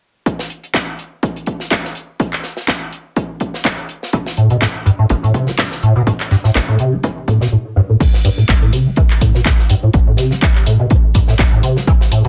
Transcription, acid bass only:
4.13 E3
4.37 A2
4.51 B2
4.62 A2
4.86 G2
4.99 A2
5.10 A1
5.23 A2
5.34 C3
5.47 A3
5.59 E3
5.83 A2
5.96 B2
6.07 A2
6.31 G2
6.44 A2
6.55 A1
6.68 A2
6.80 C3
6.93 A3
7.04 E3
7.28 A2
7.41 B2
7.52 A2
7.76 G2
7.89 A2
8.00 A2
8.25 G2
8.38 A2
8.49 A1
8.62 A2
8.73 C3
8.86 A3
8.97 E3
9.21 A2
9.34 B2
9.46 A2
9.70 G2
9.83 A2
9.94 A1
10.07 A2
10.18 C3
10.31 A3
10.42 E3
10.66 A2
10.80 B2
10.91 A2
11.15 G2
11.28 A2
11.39 A1
11.52 A2
11.63 C3
11.76 A3
11.87 E3
12.12 A2
12.25 B2

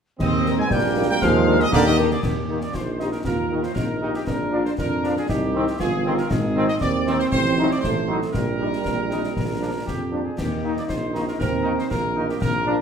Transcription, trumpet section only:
0.20 D#5
0.60 G#5
0.72 G5
1.10 G5
1.23 F5
1.61 D#5
1.73 G4 D5
1.85 D#5
2.11 G#4 D5
2.22 G4
2.62 D5
2.75 C5
3.12 A#4
3.26 A#4
3.63 C5
3.75 A#4
4.15 G4
4.27 A#4
4.66 C5
4.78 A#4
5.18 G#4
5.29 G4
5.80 G#4
6.18 A#4
6.32 G#4
6.68 D#5
6.81 D5
7.20 C5
7.32 C5
7.71 D5
7.81 C5
8.33 A#4
9.87 G4
10.25 G#4
10.38 G4
10.77 D5
10.89 C5
11.28 A#4
11.40 A#4
11.79 C5
11.91 A#4
12.30 G4
12.42 A#4

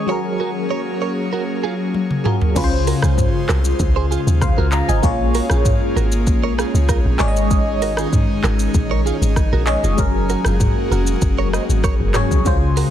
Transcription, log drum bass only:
2.56 C#2
3.03 C#2
3.49 C2
3.80 C#2
4.27 D#2
4.57 C#2
4.89 G#1
5.04 A#1
5.50 A#1
5.96 G#1
6.27 A#1
6.74 C#2
7.05 A#1
7.20 G#1
8.44 G#1
8.74 A#1
9.22 G#1
9.53 A#1
9.84 F1
9.98 F#1
10.45 F#1
10.91 F1
11.22 F#1
11.69 G#1
12.00 F#1
12.31 C2
12.46 C#2

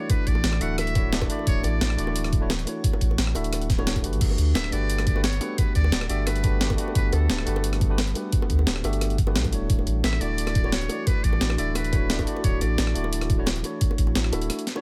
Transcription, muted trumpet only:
Already playing: C#5
0.10 B4
0.27 D5
0.62 F#5
0.79 E5
1.48 C#5
1.65 D5
4.55 E5
4.73 D5
5.07 D5
5.24 C#5
5.58 B4
5.76 D5
6.10 D5
6.27 B4
6.96 B4
7.13 A4
10.04 E5
10.21 D5
10.73 C#5
11.07 B4
11.24 D5
11.58 D5
11.76 B4
12.44 C#5
12.61 D5

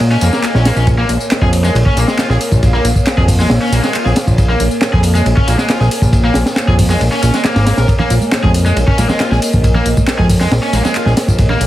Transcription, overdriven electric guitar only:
0.12 C#4
0.22 A#3
0.33 A#3
0.44 A#3
0.55 C#4
0.66 A#3
0.77 C#4
0.98 A#3
1.43 G#4
1.65 G#3
1.86 C#4
1.97 A#3
2.09 G#3
2.19 F4
2.31 G#4
2.74 A#3
3.18 G#4
3.40 G#3
3.62 C#4
3.73 A#3
3.84 G#3
3.94 F4
4.05 G#4
4.49 A#3
4.93 G#4
5.15 G#3
5.37 C#4
5.48 A#3
5.59 G#3
5.69 F4
5.81 G#4
6.24 A#3
6.68 G#4
6.90 G#3
7.12 C#4
7.23 C#4
7.34 G#3
7.45 A#3
7.56 A#3
7.66 A#3
7.78 A#4
8.00 A#3
8.44 G#4
8.66 G#3
8.88 C#4
8.98 A#3
9.09 G#3
9.20 F4
9.31 G#4
9.75 A#3
10.19 G#4
10.41 G#3
10.63 C#4
10.74 A#3
10.85 G#3
10.95 F4
11.06 G#4
11.50 A#3

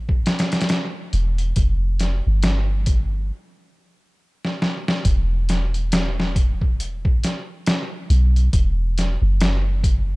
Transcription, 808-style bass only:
Already playing: A1
1.13 E1
1.57 F1
2.27 G1
5.05 E1
8.10 B1
8.53 E1
9.22 F#1

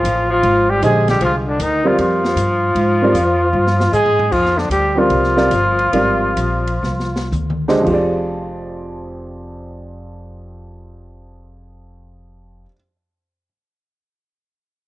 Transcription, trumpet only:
Already playing: F4
0.32 F4
0.70 G4
0.84 G#4
1.10 G4
1.25 F4
1.50 D4
1.63 D#4
1.87 F4
2.00 F4
3.94 G#4
4.32 F4
4.58 D4
4.72 G4
4.99 F4

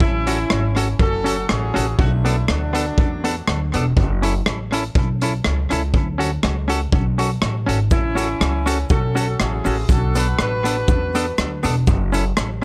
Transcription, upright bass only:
0.01 A1
0.51 G#1
1.00 F#1
1.50 A1
1.76 A1
1.99 B1
2.49 D2
2.98 E2
3.48 D2
3.75 E1
3.97 F#1
4.47 A1
4.96 B1
5.45 C#2
5.71 C#2
5.94 D2
6.44 C#2
6.93 B1
7.42 A1
7.68 G#1
7.91 A1
8.41 C#2
8.90 B1
9.40 A1
9.66 A1
9.89 B1
10.39 A1
10.88 E2
11.38 D2
11.65 E1
11.88 F#1
12.38 A1

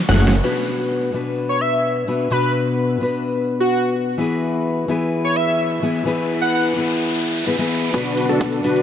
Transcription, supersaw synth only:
0.09 A3 C#4 F#4 G#4 F#5
7.94 D4 F#4 B4
8.29 D4 F#4 A4
8.64 D4 F#4 B4

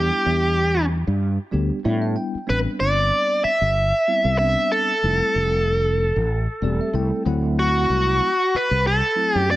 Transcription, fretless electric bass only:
0.26 E2
1.07 G2
1.53 D2
1.85 A2
2.35 muted fretless electric bass stroke
2.49 A1
2.80 G1
3.44 muted fretless electric bass stroke
3.61 G1
4.24 C2
5.03 F1
5.35 F1
6.16 A1
6.62 E1
6.93 C2
7.26 D2
7.89 C2
8.54 muted fretless electric bass stroke
8.71 C2
9.35 F#2

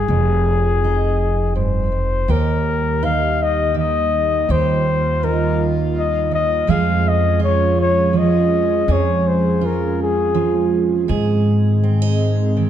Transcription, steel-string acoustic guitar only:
Already playing: D#4
0.10 F2
0.84 D#4
1.55 G2
1.92 F2
2.28 D#2 G4
3.03 D#4
3.74 D#3
4.49 D#2 G4
5.23 D#4
6.31 D#2
6.67 F2 F3 G#3 F4 G#4
7.39 F4
8.13 F3
8.88 F2 G#4
9.61 F4
10.35 F3
11.08 G#2 G#4
11.83 C4
12.02 D#4
12.57 D#3

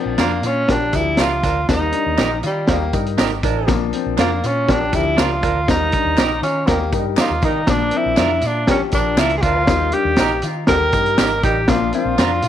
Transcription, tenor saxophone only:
0.21 A#3
0.47 C#4
0.71 D4
0.96 E4
1.21 F4
1.70 D#4
2.46 G3
2.69 A#3
4.20 A#3
4.46 C#4
4.71 D4
4.96 E4
5.20 F4
5.70 D#4
6.43 C#4
6.67 A#3
7.21 F4
7.45 D#4
7.71 D4
7.98 E4
8.47 D4
8.71 C#4
8.95 D4
9.20 E4
9.38 G#4
9.42 F4
9.93 G4
10.69 A#4
11.44 G4
11.69 F4
11.95 F4

